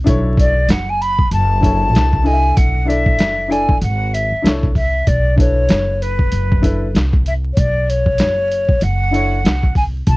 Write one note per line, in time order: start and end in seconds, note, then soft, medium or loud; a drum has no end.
0.04 0.66 B1 loud
0.04 0.52 D4 medium
0.04 0.52 E4 medium
0.04 0.53 A4 medium
0.04 kick loud
0.04 closed hi-hat medium
0.08 0.54 C#5 medium
0.37 0.72 D5 medium
0.37 kick loud
0.37 closed hi-hat medium
0.69 1.28 F#1 medium
0.69 0.91 F#5 medium
0.69 snare loud
0.69 closed hi-hat loud
0.89 1.02 G#5 medium
1.01 1.31 B5 loud
1.01 closed hi-hat medium
1.19 kick loud
1.31 1.94 F#1 loud
1.31 2.27 A5 loud
1.31 closed hi-hat medium
1.61 2.22 D4 medium
1.61 2.23 E4 medium
1.61 2.24 A4 medium
1.61 2.52 C#5 medium
1.61 kick medium
1.61 closed hi-hat medium
1.94 2.54 C2 medium
1.94 snare medium
1.94 closed hi-hat medium
2.13 kick medium
2.23 2.84 D4 medium
2.23 2.85 E4 medium
2.23 2.87 A4 medium
2.23 2.34 D#5 medium
2.23 2.58 G#5 loud
2.23 open hi-hat soft
2.34 3.18 E5 medium
2.56 3.19 B1 medium
2.56 2.89 F#5 medium
2.56 kick loud
2.56 closed hi-hat medium
2.85 3.47 D4 medium
2.85 3.48 E4 medium
2.85 3.49 A4 medium
2.85 3.50 D5 medium
2.85 3.52 E5 loud
2.90 closed hi-hat medium
3.06 kick medium
3.19 3.79 F#1 medium
3.19 snare loud
3.19 closed hi-hat loud
3.48 3.73 D4 medium
3.48 3.74 E4 medium
3.48 3.74 A4 medium
3.48 3.75 D5 medium
3.48 3.81 G#5 medium
3.48 closed hi-hat medium
3.69 kick loud
3.82 4.29 G#1 medium
3.82 4.15 F#5 loud
3.82 closed hi-hat medium
4.13 4.49 E5 medium
4.13 closed hi-hat medium
4.31 muted upright bass stroke soft
4.42 5.04 C2 medium
4.42 4.67 D4 medium
4.42 4.67 E4 medium
4.42 4.68 A4 medium
4.42 4.69 C#5 medium
4.42 closed hi-hat medium
4.47 snare loud
4.63 kick medium
4.75 5.09 E5 medium
4.75 kick medium
4.75 open hi-hat soft
5.07 5.66 B1 medium
5.07 5.38 D5 medium
5.07 kick loud
5.07 closed hi-hat medium
5.36 6.26 D4 medium
5.36 6.26 E4 soft
5.36 6.27 A4 medium
5.36 6.28 B4 medium
5.36 6.03 C#5 medium
5.36 kick loud
5.36 closed hi-hat medium
5.69 6.29 F#1 medium
5.69 snare loud
5.69 closed hi-hat loud
6.02 6.95 B4 medium
6.02 closed hi-hat medium
6.19 kick loud
6.32 6.91 F#1 medium
6.32 closed hi-hat medium
6.52 kick medium
6.61 6.86 D4 medium
6.61 6.86 E4 medium
6.61 6.87 A4 medium
6.61 6.88 B4 medium
6.61 kick medium
6.61 closed hi-hat medium
6.95 7.54 C2 medium
6.95 snare medium
6.95 closed hi-hat medium
7.13 kick medium
7.26 7.33 E5 medium
7.26 closed hi-hat medium
7.53 7.60 C#5 medium
7.57 8.16 B1 medium
7.57 7.91 D5 medium
7.57 kick loud
7.57 closed hi-hat loud
7.89 8.84 C#5 medium
7.89 closed hi-hat medium
8.06 kick medium
8.18 8.79 F#1 medium
8.18 snare loud
8.18 closed hi-hat medium
8.52 closed hi-hat medium
8.69 kick loud
8.81 9.41 F#1 medium
8.81 9.76 F#5 loud
8.81 closed hi-hat medium
9.11 9.36 D4 medium
9.11 9.36 E4 medium
9.11 9.37 A4 medium
9.11 9.38 C#5 medium
9.11 closed hi-hat medium
9.44 10.04 C2 medium
9.44 snare loud
9.44 closed hi-hat medium
9.63 kick medium
9.75 9.83 G#5 medium
9.75 kick medium
9.75 open hi-hat soft
10.07 10.17 B1 medium
10.07 10.17 A5 loud
10.07 kick loud
10.07 closed hi-hat medium